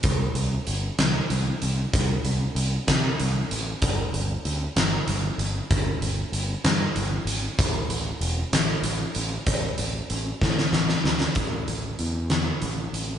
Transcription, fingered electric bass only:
X:1
M:6/8
L:1/8
Q:3/8=64
K:Am
V:1 name="Fingered electric bass" clef=bass
C,, C,, G,,, C,, C,, C,, | C,, C,, C,, C, C,, A,,, | G,,, G,,, D,, G,,, G,,, G,,, | G,,, G,,, G,,, G,, G,,, ^G,,, |
A,,, A,,, E,,, A,,, A,,, A,,, | A,,, A,,, A,,, A,, A,,, D,, | A,,, A,,, E,,2 A,,, A,,, |]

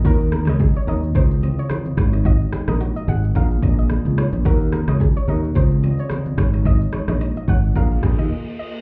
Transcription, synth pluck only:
X:1
M:4/4
L:1/16
Q:"Swing 16ths" 1/4=109
K:Ebdor
V:1 name="Synth pluck"
B2 z e z d e z c z2 d z4 | e2 z e z e g z f z2 e z4 | B2 z e z d e z c z2 d z4 | e2 z e z e g z f z2 e z2 e z |]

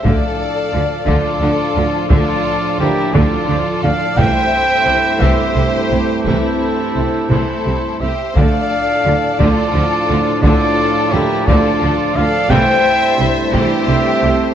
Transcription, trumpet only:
X:1
M:6/8
L:1/8
Q:3/8=58
K:Dm
V:1 name="Trumpet"
f3 d3 | d2 G d2 f | g3 e2 z | A3 c2 e |
f3 d3 | d2 G d2 f | g2 z e3 |]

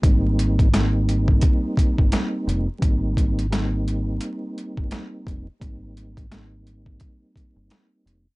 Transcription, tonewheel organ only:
X:1
M:4/4
L:1/16
Q:"Swing 16ths" 1/4=86
K:Ab
V:1 name="Tonewheel organ"
[G,B,CE]4 [G,B,CE]8- [G,B,CE]3 z | [G,B,CE]4 [G,B,CE]8- [G,B,CE]3 z | [G,B,CE]4 [G,B,CE]8- [G,B,CE]3 z |]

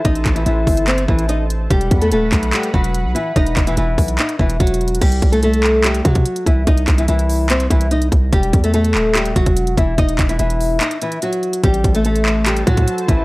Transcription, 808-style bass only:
X:1
M:4/4
L:1/16
Q:1/4=145
K:Em
V:1 name="808-style bass" clef=bass
A,,,2 A,,,2 A,,,2 G,,,4 A,,,6 | E,,,2 E,,2 ^D,,,2 B,,,2 z2 E,,,3 B,,, z2 | E,,,2 E,,,2 E,,,2 B,,,2 z2 E,,,2 E,,,4 | C,,2 C,,8 C,2 z2 C,,2 |
C,,2 C,,2 C,,6 C,,4 C,,2 | E,,,2 E,,4 ^D,,,4 E,,, E,,,3 E,,,2 | E,,,2 E,,,2 E,,,4 z8 | A,,,2 A,,,8 A,,2 z2 A,,,2 |]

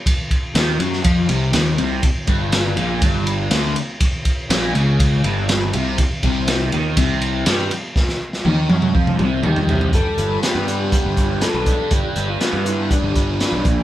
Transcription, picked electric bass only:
X:1
M:4/4
L:1/16
Q:1/4=122
K:Gmix
V:1 name="Picked electric bass" clef=bass
z4 _E,,2 ^F,,2 =F,,2 C,,2 E,,2 C,,2 | z2 G,,,4 _B,,,2 G,,,4 D,,2 z2 | z4 _B,,,2 ^C,,4 G,,,4 =C,,2 | z2 C,,4 _E,,2 C,,4 G,,2 z2 |
z4 _E,,2 ^F,,2 =F,,2 C,,2 E,,2 C,,2 | G,,, z G,,,2 z G,,4 G,,,4 B,,,2 z | G,,, z G,,,2 z G,,4 G,,,4 B,,, _B,,,2 |]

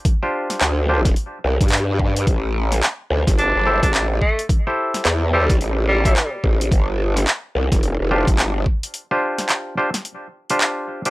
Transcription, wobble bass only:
X:1
M:4/4
L:1/16
Q:"Swing 16ths" 1/4=108
K:Gmix
V:1 name="Wobble bass" clef=bass
z4 D,,4 z2 C,, G,,4- G,, | A,,,4 z2 D,, G,,,2 G,,,2 A,,,3 z2 | z4 E,,4 A,,,4 z2 A,,,2 | G,,,4 z2 C,, F,,,2 F,,,2 G,,,3 z2 |
z16 |]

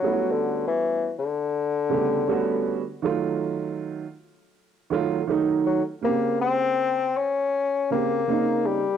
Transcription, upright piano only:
X:1
M:4/4
L:1/16
Q:"Swing 16ths" 1/4=80
K:Fm
V:1 name="Upright piano"
[G,=A,=B,^C=E^F]4- [G,A,B,CEF] z4 z [^C,G,A,B,G]2 [G,A,B,CF]2 z2 | [E,_G,=A,F]4- [E,G,A,F] z4 z [E,G,A,F]2 [E,G,A,E]2 z2 | [C,D,B,CG]4- [C,D,B,CG] z4 z [D,B,CG]2 [D,B,CE]2 z2 |]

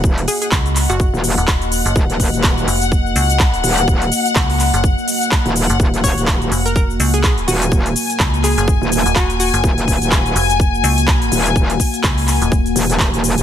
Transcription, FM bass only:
X:1
M:4/4
L:1/16
Q:"Swing 16ths" 1/4=125
K:Ebm
V:1 name="FM bass" clef=bass
z4 D,,3 G,,,2 z2 E,,,4 G,,, | z6 F,,,4 D,,4 z2 | z4 D,,3 G,,,2 z6 G,,, | z6 F,,,4 D,,4 z2 |
z4 D,,3 G,,,2 z2 E,,,4 G,,, | z6 F,,,4 D,,4 z2 | z4 D,,3 E,,,3 z6 |]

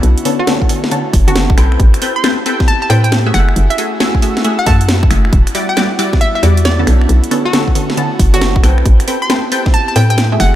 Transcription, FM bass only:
X:1
M:4/4
L:1/8
Q:"Swing 16ths" 1/4=136
K:Amix
V:1 name="FM bass" clef=bass
B,,, z4 F,,,2 B,,, | A,,, z4 A,,2 F,,, | F,,, z4 F,,2 F,,, | E,,, z4 E,,2 B,,, |
B,,, z4 F,,,2 B,,, | A,,, z4 A,,2 F,,, |]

